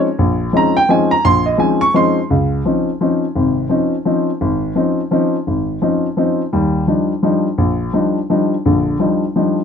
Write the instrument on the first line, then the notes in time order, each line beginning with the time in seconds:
grand piano
0.19 A#1
0.53 F3 G#3 C4 C#4 D#4 A#5
0.77 G5
0.89 F3 G#3 C4 C#4 D#4 G#5
1.11 A#5
1.25 A#1 C6
1.46 D#5
1.58 F3 G#3 C4 C#4 D#4 G#5
1.81 C#6
1.94 F3 G#3 C4 C#4 D#4 C6
2.30 C#2
2.65 F3 C4 C#4 D#4
3.01 F3 C4 C#4 D#4
3.36 G#1 C3
3.69 F3 C4 C#4 D#4
4.05 F3 C4 C#4 D#4
4.41 G#1
4.75 F3 C4 C#4 D#4
5.11 F3 C4 C#4 D#4
5.47 G#1
5.82 F3 C4 C#4 D#4
6.17 F3 C4 C#4 D#4
6.53 D#2 G3
6.87 F3 G3 D4 D#4
7.23 F3 G3 D4 D#4
7.58 A#1
7.93 F3 G3 D4 D#4
8.30 F3 G3 D4 D#4
8.65 A#1 D3
8.99 F3 G3 D4 D#4
9.36 F3 G3 D4 D#4